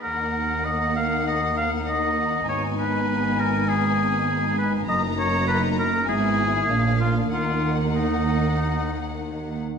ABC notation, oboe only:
X:1
M:4/4
L:1/8
Q:1/4=99
K:Ebm
V:1 name="Oboe"
B2 e f e f e2 | d c2 B A3 c | e d c B ^G3 F | F z E4 z2 |]